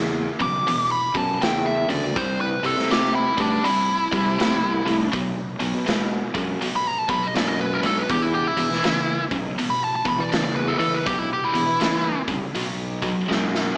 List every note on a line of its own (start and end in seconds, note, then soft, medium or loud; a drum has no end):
0.00 0.27 E2 medium
0.00 0.35 E2 medium
0.00 0.35 C#3 medium
0.39 0.61 B1 medium
0.39 0.64 E2 medium
0.39 0.64 C#3 medium
0.39 0.90 D6 medium
0.39 kick medium
0.39 open hi-hat soft
0.67 1.10 E2 medium
0.67 1.10 B2 medium
0.67 open hi-hat medium
0.92 1.16 B5 medium
1.15 1.39 E2 medium
1.15 1.39 F#2 medium
1.15 1.39 B2 medium
1.15 1.41 A5 medium
1.15 kick medium
1.15 open hi-hat soft
1.41 1.84 E2 medium
1.41 1.85 E2 medium
1.41 1.84 C#3 medium
1.41 1.66 G5 medium
1.41 snare loud
1.41 open hi-hat medium
1.66 1.90 E5 medium
1.89 2.13 D2 medium
1.89 2.13 E2 medium
1.89 2.13 C#3 medium
1.89 2.15 D5 medium
1.89 open hi-hat soft
2.16 2.53 C2 medium
2.16 2.59 C3 medium
2.16 2.59 G3 medium
2.16 2.40 C5 medium
2.16 kick loud
2.16 open hi-hat medium
2.41 2.65 B4 medium
2.63 2.73 C2 medium
2.63 2.87 C3 medium
2.63 2.88 G3 medium
2.63 2.90 A4 medium
2.63 open hi-hat soft
2.77 3.23 C3 medium
2.77 snare soft
2.91 3.33 C3 medium
2.91 3.33 A3 medium
2.91 3.15 G4 medium
2.91 snare loud
2.91 open hi-hat medium
3.15 3.39 E4 medium
3.37 3.58 G2 medium
3.37 3.62 C3 medium
3.37 3.62 A3 medium
3.37 kick medium
3.37 open hi-hat soft
3.41 3.64 D4 medium
3.64 4.07 C3 medium
3.64 4.07 G3 medium
3.64 5.10 E4 loud
3.64 open hi-hat medium
4.11 4.36 C3 medium
4.11 4.36 G3 medium
4.11 kick medium
4.11 open hi-hat soft
4.26 4.54 C3 medium
4.39 4.81 C3 medium
4.39 4.81 A3 medium
4.39 snare loud
4.39 open hi-hat medium
4.62 4.81 C2 medium
4.85 5.06 C2 medium
4.85 5.10 C3 medium
4.85 5.10 A3 medium
4.85 open hi-hat soft
5.12 5.31 B1 medium
5.12 5.55 B2 medium
5.12 5.55 F#3 medium
5.12 kick loud
5.12 open hi-hat medium
5.60 5.71 B1 medium
5.60 5.84 B2 medium
5.60 5.84 F#3 medium
5.60 open hi-hat medium
5.74 6.21 B2 medium
5.86 6.29 B2 medium
5.86 6.30 G#3 medium
5.86 snare medium
5.86 open hi-hat medium
6.34 6.55 F#2 medium
6.34 6.58 B2 medium
6.34 6.59 G#3 medium
6.34 kick medium
6.34 open hi-hat soft
6.61 7.04 B2 medium
6.61 7.04 F#3 loud
6.61 open hi-hat medium
6.76 6.87 B5 medium
6.87 6.99 A#5 medium
6.99 7.06 A5 medium
7.08 7.33 B2 medium
7.08 7.33 F#3 medium
7.08 7.26 B5 medium
7.08 kick medium
7.08 open hi-hat soft
7.23 7.33 D#5 medium
7.35 7.84 F#2 medium
7.35 7.78 B2 medium
7.35 7.78 G#3 medium
7.35 7.48 D5 medium
7.35 snare loud
7.35 open hi-hat medium
7.48 7.59 D#5 medium
7.61 7.82 B4 medium
7.74 7.80 A#4 medium
7.82 8.03 B1 medium
7.82 8.07 B2 medium
7.82 8.07 G#3 medium
7.82 8.01 A4 medium
7.82 open hi-hat soft
7.98 8.08 B4 medium
8.09 8.46 E2 medium
8.09 8.53 E2 medium
8.09 8.53 B2 medium
8.09 8.22 G4 medium
8.09 kick loud
8.09 open hi-hat medium
8.22 8.34 E4 medium
8.34 8.47 G4 medium
8.47 9.24 E4 medium
8.57 8.81 E2 medium
8.57 8.67 E2 medium
8.57 8.81 B2 medium
8.57 open hi-hat soft
8.70 9.17 E3 medium
8.70 snare soft
8.84 9.27 E2 medium
8.84 9.27 C#3 medium
8.84 snare loud
8.84 open hi-hat medium
9.31 9.52 B1 medium
9.31 9.56 E2 medium
9.31 9.56 C#3 medium
9.31 kick medium
9.31 open hi-hat soft
9.58 10.01 E2 medium
9.58 10.01 B2 loud
9.58 open hi-hat medium
9.70 9.81 B5 medium
9.84 9.94 A5 medium
9.96 10.02 A5 medium
10.05 10.29 E2 medium
10.05 10.30 B2 medium
10.05 10.23 B5 medium
10.05 kick medium
10.05 open hi-hat soft
10.19 10.47 E3 medium
10.19 10.29 D5 medium
10.30 10.75 E2 medium
10.30 10.75 C#3 medium
10.30 10.43 D5 medium
10.30 snare loud
10.30 open hi-hat medium
10.44 10.55 D5 medium
10.56 10.74 E2 medium
10.56 10.78 B4 medium
10.68 10.76 A4 medium
10.78 11.04 E2 medium
10.78 11.04 C#3 medium
10.78 11.00 E3 medium
10.78 10.95 A4 medium
10.78 open hi-hat soft
10.94 11.05 B4 medium
11.06 11.25 B1 medium
11.06 11.49 E2 medium
11.06 11.49 B2 medium
11.06 11.19 G4 medium
11.06 kick loud
11.06 open hi-hat medium
11.19 11.29 E4 loud
11.33 11.54 G4 medium
11.45 12.21 E4 medium
11.53 11.64 E2 medium
11.53 11.78 E2 medium
11.53 11.78 B2 medium
11.53 open hi-hat soft
11.66 12.14 E3 medium
11.80 12.23 E2 medium
11.80 12.23 C#3 medium
11.80 snare medium
11.80 open hi-hat medium
12.28 12.39 C2 medium
12.28 12.52 E2 medium
12.28 12.52 C#3 medium
12.28 kick medium
12.28 open hi-hat soft
12.54 13.12 B1 medium
12.54 12.98 B2 medium
12.54 12.98 F#3 medium
12.54 open hi-hat medium
13.02 13.26 B2 medium
13.02 13.27 F#3 medium
13.02 kick medium
13.02 open hi-hat medium
13.28 13.74 F#2 medium
13.28 13.71 B2 medium
13.28 13.72 G#3 medium
13.28 snare medium
13.55 snare medium